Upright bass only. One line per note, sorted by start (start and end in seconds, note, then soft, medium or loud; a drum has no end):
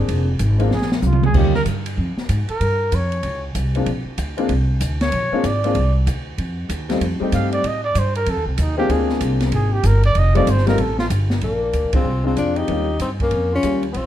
0.08 0.39 F1 medium
0.39 0.70 G#1 medium
0.71 1.01 A#1 medium
1.02 1.33 C2 medium
1.34 1.64 D#2 medium
1.65 1.96 G2 medium
1.97 2.16 F2 medium
2.17 muted upright bass stroke soft
2.29 2.47 G#2 medium
2.49 muted upright bass stroke soft
2.60 2.91 G2 medium
2.92 3.22 F2 medium
3.23 3.53 C#2 medium
3.55 3.85 C2 medium
3.86 4.04 A#1 medium
4.05 muted upright bass stroke soft
4.18 4.48 D2 medium
4.49 4.79 C2 medium
4.80 5.11 D2 medium
5.12 5.30 A#1 medium
5.31 muted upright bass stroke soft
5.43 5.74 G#1 medium
5.75 6.05 C2 medium
6.06 6.37 D2 medium
6.38 6.68 F2 medium
6.69 7.00 D#2 medium
7.01 7.19 F2 medium
7.20 muted upright bass stroke soft
7.32 7.63 G2 medium
7.64 7.94 A2 medium
7.95 8.25 G2 medium
8.26 8.36 F2 medium
8.36 8.45 D#2 medium
8.46 8.56 C2 medium
8.58 8.88 D#2 medium
8.89 9.20 D2 medium
9.21 9.51 C2 medium
9.52 9.83 G#1 medium
9.83 10.14 G1 medium
10.15 10.46 F1 medium
10.47 10.77 G1 medium
10.78 11.09 A1 medium
11.10 11.41 G1 loud
11.42 11.72 A#1 medium
11.73 11.84 D2 medium
11.82 11.93 A#1 medium
11.94 12.03 G#1 medium
12.03 12.35 C2 medium
12.36 12.67 F2 medium
12.68 12.99 D#2 medium
13.00 13.30 G2 medium
13.31 13.62 F2 medium
13.63 13.94 D#2 medium
13.94 14.06 A#1 medium